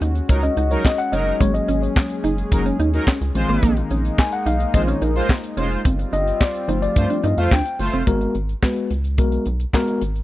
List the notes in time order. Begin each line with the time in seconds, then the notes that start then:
Already playing: G#3 C#4 F#4
0.01 D#2 D#4, closed hi-hat
0.15 closed hi-hat, shaker
0.29 C#2 F#3 D#4 A#4 C#5, muted clean electric guitar stroke, kick, closed hi-hat, shaker
0.43 C#4 D#5, closed hi-hat, shaker
0.57 C#2 D#4, closed hi-hat
0.71 F#3 D#4 A#4 C#5, closed hi-hat, shaker
0.85 D#5, kick, snare, clap, shaker
0.98 F#5, closed hi-hat, shaker
1.12 F#1 F#3 C#4 D#4 A#4 D#5, closed hi-hat
1.25 closed hi-hat, shaker
1.40 G#1 F#3 G#3 A#3 C#4 G#4 C#5, kick, closed hi-hat, shaker
1.54 D#5, muted clean electric guitar stroke, closed hi-hat, shaker
1.68 G#1 C#4, closed hi-hat, shaker
1.82 C#5, closed hi-hat, shaker
1.96 kick, snare, clap, shaker
2.10 closed hi-hat, shaker
2.24 F#1 D#4, closed hi-hat
2.38 closed hi-hat, shaker
2.51 F#1 F#3 A#3 C#4 D#4 A#4, muted clean electric guitar stroke, kick, closed hi-hat, shaker
2.66 C#4, closed hi-hat, shaker
2.79 D#2 D#4, closed hi-hat
2.93 F#3 D#4 A#4, closed hi-hat, shaker
3.07 C#4, kick, snare, clap, shaker
3.21 C#2, closed hi-hat, shaker
3.35 A#1 D#3 G#3 A#3 C4 D#4 F4 C5, muted clean electric guitar stroke, closed hi-hat
3.47 G#1 A#3, closed hi-hat, shaker
3.63 A#1 A#3, kick, closed hi-hat, shaker
3.77 muted clean electric guitar stroke, closed hi-hat, shaker
3.90 A#1 C#4, closed hi-hat, shaker
4.05 closed hi-hat, shaker
4.18 G#5, kick, snare, clap, shaker
4.32 F#5, closed hi-hat, shaker
4.46 B1 D#4 F5, closed hi-hat
4.59 closed hi-hat, shaker
4.73 A#1 D#3 G#3 C4 F4 C5 D#5, muted clean electric guitar stroke, kick, closed hi-hat, shaker
4.88 C#4 C#5, closed hi-hat, shaker
5.01 A#1 D#4 A#4, closed hi-hat
5.15 G#3 F4 C5, closed hi-hat, shaker
5.29 kick, snare, clap, shaker
5.43 closed hi-hat, shaker
5.57 F1 G#3 C#4 F4 C5, closed hi-hat
5.70 closed hi-hat, shaker
5.85 G1 G3 C4 F4, kick, closed hi-hat, shaker
5.99 muted clean electric guitar stroke, closed hi-hat, shaker
6.12 G1 D4 D#5, closed hi-hat, shaker
6.27 closed hi-hat, shaker
6.40 D5, kick, snare, clap, shaker
6.55 closed hi-hat, shaker
6.68 G1 F3 A3 C4 D#4 C5, closed hi-hat, shaker
6.82 D5, closed hi-hat, shaker
6.95 G2 A3 F4 C5, muted clean electric guitar stroke, kick, closed hi-hat, shaker
7.10 D4, closed hi-hat, shaker
7.24 G2 D#4 D#5, closed hi-hat
7.38 F2 A3 F4 C5 F5, closed hi-hat, shaker
7.51 D2 D4 G5, kick, snare, clap, shaker
7.65 closed hi-hat, shaker
7.79 G1 A3 F4 C5, muted clean electric guitar stroke, open hi-hat, shaker
7.92 F1 C4, closed hi-hat, shaker
8.07 G#1 G#3 B3 F#4 A#4, kick, closed hi-hat, shaker
8.21 closed hi-hat, shaker
8.34 G#1, closed hi-hat, shaker
8.49 closed hi-hat, shaker
8.62 G#3 B3 F#4 B4, kick, snare, clap, shaker
8.76 closed hi-hat, shaker
8.90 C#2, closed hi-hat, shaker
9.04 closed hi-hat, shaker
9.18 B1 G#3 B3 F#4 A#4, kick, closed hi-hat, shaker
9.32 closed hi-hat, shaker
9.46 B1, closed hi-hat
9.60 closed hi-hat, shaker
9.73 G#3 B3 F#4 A#4, kick, snare, clap, shaker
9.87 closed hi-hat, shaker
10.01 G#1, closed hi-hat
10.14 closed hi-hat, shaker